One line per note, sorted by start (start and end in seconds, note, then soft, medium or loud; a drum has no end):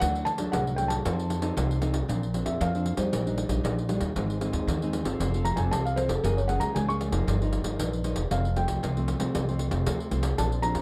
0.00 0.45 D2 loud
0.00 0.51 D3 medium
0.00 0.26 F#3 medium
0.00 0.26 A3 medium
0.00 0.26 D4 medium
0.00 0.27 F#5 loud
0.00 pandeiro medium
0.15 pandeiro soft
0.25 0.53 A5 loud
0.25 pandeiro medium
0.38 0.74 F#3 medium
0.38 0.74 A3 medium
0.38 0.75 D4 medium
0.38 pandeiro medium
0.52 0.97 C2 medium
0.52 1.03 A2 medium
0.52 0.77 F#5 medium
0.52 pandeiro medium
0.67 pandeiro soft
0.76 1.01 F#3 medium
0.76 1.01 A3 medium
0.76 1.01 D4 medium
0.76 0.91 G5 medium
0.76 pandeiro medium
0.88 1.77 A5 medium
0.88 pandeiro medium
1.05 1.49 F2 loud
1.05 1.55 F3 medium
1.05 1.40 C4 medium
1.05 1.40 D#4 medium
1.05 1.40 A4 medium
1.05 pandeiro medium
1.19 pandeiro soft
1.30 pandeiro medium
1.42 1.78 C4 medium
1.42 1.78 D#4 medium
1.42 1.78 A4 medium
1.42 pandeiro medium
1.57 2.01 C2 loud
1.57 2.06 C3 medium
1.57 pandeiro medium
1.71 pandeiro soft
1.82 1.98 C4 medium
1.82 1.98 D#4 medium
1.82 1.98 A4 medium
1.82 pandeiro medium
1.94 pandeiro medium
2.08 2.42 A#1 medium
2.08 2.58 A#2 soft
2.08 2.24 F3 soft
2.08 2.24 C4 medium
2.08 2.24 D4 medium
2.08 pandeiro medium
2.23 pandeiro soft
2.34 2.59 F3 medium
2.34 2.69 C4 medium
2.34 2.69 D4 medium
2.34 pandeiro medium
2.46 2.58 F2 medium
2.46 2.59 E5 medium
2.46 pandeiro medium
2.60 2.94 F2 loud
2.60 2.73 F3 medium
2.60 2.97 F5 medium
2.60 pandeiro medium
2.75 2.96 F3 medium
2.75 2.96 C4 medium
2.75 2.96 D4 medium
2.75 pandeiro soft
2.86 pandeiro medium
2.97 3.09 F2 medium
2.97 3.20 G3 medium
2.97 3.20 D4 medium
2.97 3.21 D#4 medium
2.97 4.24 C5 medium
2.97 pandeiro medium
3.12 3.46 A#1 medium
3.12 3.62 A#2 medium
3.12 pandeiro medium
3.26 3.47 G3 medium
3.26 3.47 D4 medium
3.26 3.48 D#4 medium
3.26 pandeiro soft
3.38 pandeiro medium
3.48 3.61 A#1 medium
3.48 3.85 G3 medium
3.48 3.85 D4 medium
3.48 3.85 D#4 medium
3.48 pandeiro medium
3.64 3.97 A#1 medium
3.64 4.13 A#2 medium
3.64 pandeiro medium
3.79 pandeiro soft
3.89 4.11 G3 medium
3.89 4.12 D4 medium
3.89 4.12 D#4 medium
3.89 pandeiro medium
4.00 4.13 D#2 medium
4.00 pandeiro medium
4.16 4.49 G#1 medium
4.16 4.65 G#2 medium
4.16 4.38 G#3 medium
4.16 4.38 C4 medium
4.16 4.39 D#4 medium
4.16 pandeiro medium
4.30 pandeiro soft
4.41 4.76 G#3 medium
4.41 4.77 C4 medium
4.41 4.77 D#4 medium
4.41 pandeiro medium
4.53 4.65 D#2 medium
4.53 pandeiro medium
4.67 5.01 D#2 loud
4.67 5.17 D#3 medium
4.67 pandeiro medium
4.82 5.04 G#3 medium
4.82 5.04 C4 medium
4.82 5.04 D#4 medium
4.82 pandeiro soft
4.93 pandeiro medium
5.04 5.17 G1 medium
5.04 5.28 C4 medium
5.04 5.28 F4 medium
5.04 5.28 A4 medium
5.04 pandeiro medium
5.20 5.53 F1 medium
5.20 5.70 F3 medium
5.20 pandeiro medium
5.34 5.56 C4 medium
5.34 5.56 F4 medium
5.34 5.56 A4 medium
5.34 pandeiro soft
5.45 5.58 A#5 medium
5.45 pandeiro medium
5.56 5.69 F1 medium
5.56 5.93 C4 medium
5.56 5.93 F4 medium
5.56 5.93 A4 medium
5.56 5.70 G#5 medium
5.56 pandeiro medium
5.71 6.05 C2 medium
5.71 6.21 C3 medium
5.71 5.84 A5 loud
5.71 pandeiro medium
5.85 5.98 F5 medium
5.85 pandeiro soft
5.96 6.13 C4 medium
5.96 6.13 F4 medium
5.96 6.13 A4 medium
5.96 6.10 C5 medium
5.96 pandeiro medium
6.08 6.21 F1 medium
6.08 6.22 A4 medium
6.08 pandeiro medium
6.23 6.57 F#1 loud
6.23 6.73 F#3 medium
6.23 6.39 A#3 medium
6.23 6.40 C#4 medium
6.23 6.40 G#4 medium
6.23 6.36 A#4 medium
6.23 pandeiro medium
6.37 6.49 C#5 medium
6.37 pandeiro soft
6.48 6.84 A#3 medium
6.48 6.84 C#4 medium
6.48 6.84 G#4 medium
6.48 6.61 F#5 medium
6.48 pandeiro medium
6.60 6.72 C#2 medium
6.60 6.74 A#5 medium
6.60 pandeiro medium
6.75 7.09 C#2 loud
6.75 7.25 C#3 medium
6.75 6.88 G#5 medium
6.75 pandeiro medium
6.89 7.10 A#3 medium
6.89 7.11 C#4 medium
6.89 7.11 G#4 medium
6.89 6.96 C#6 medium
6.89 pandeiro soft
7.01 pandeiro medium
7.12 7.24 F1 medium
7.12 7.35 F3 medium
7.12 7.35 A#3 medium
7.12 7.35 D#4 medium
7.12 pandeiro medium
7.27 7.60 G1 medium
7.27 7.77 G2 medium
7.27 pandeiro medium
7.41 7.63 F3 medium
7.41 7.63 A#3 medium
7.41 7.63 D#4 medium
7.41 pandeiro soft
7.53 pandeiro medium
7.64 7.76 G1 medium
7.64 8.00 F3 medium
7.64 8.00 A#3 medium
7.64 8.00 D#4 medium
7.64 pandeiro medium
7.79 8.12 A#1 medium
7.79 8.29 G2 medium
7.79 pandeiro medium
7.93 pandeiro soft
8.04 8.20 F3 medium
8.04 8.20 A#3 medium
8.04 8.20 D#4 medium
8.04 pandeiro medium
8.16 8.28 E1 medium
8.16 pandeiro medium
8.31 8.64 F1 medium
8.31 8.80 F2 medium
8.31 8.47 F3 medium
8.31 8.47 A3 medium
8.31 8.47 C4 medium
8.31 8.56 F5 medium
8.31 pandeiro medium
8.45 pandeiro soft
8.56 8.81 F3 medium
8.56 8.81 A3 medium
8.56 8.81 C4 medium
8.56 9.31 G5 medium
8.56 pandeiro medium
8.68 8.80 C2 medium
8.68 pandeiro medium
8.83 9.16 C2 loud
8.83 9.32 C3 medium
8.83 pandeiro medium
8.96 9.18 F3 medium
8.96 9.18 A3 medium
8.96 9.18 C4 medium
8.96 pandeiro soft
9.08 pandeiro medium
9.19 9.32 C2 medium
9.19 9.42 F3 medium
9.19 9.42 A3 medium
9.19 9.43 C4 medium
9.19 pandeiro medium
9.34 9.68 C2 medium
9.34 9.84 F2 medium
9.34 pandeiro medium
9.48 9.70 F3 medium
9.48 9.70 A3 medium
9.48 9.70 C4 medium
9.48 pandeiro soft
9.59 pandeiro medium
9.71 9.83 F1 medium
9.71 10.07 F3 medium
9.71 10.07 A3 medium
9.71 10.08 C4 medium
9.71 pandeiro medium
9.86 10.10 D2 medium
9.86 10.35 C3 medium
9.86 pandeiro medium
10.00 pandeiro soft
10.11 10.35 C2 medium
10.11 10.27 F3 medium
10.11 10.27 A3 medium
10.11 10.27 C4 medium
10.11 pandeiro medium
10.23 pandeiro medium
10.38 10.71 A#1 medium
10.38 10.82 A#2 medium
10.38 10.60 F3 medium
10.38 10.60 C4 medium
10.38 10.60 D4 medium
10.38 10.63 A5 medium
10.38 pandeiro medium
10.52 pandeiro soft
10.62 10.82 F3 medium
10.62 10.82 C4 medium
10.62 10.82 D4 medium
10.62 10.82 A#5 loud
10.62 pandeiro medium
10.75 10.82 F2 medium
10.75 pandeiro medium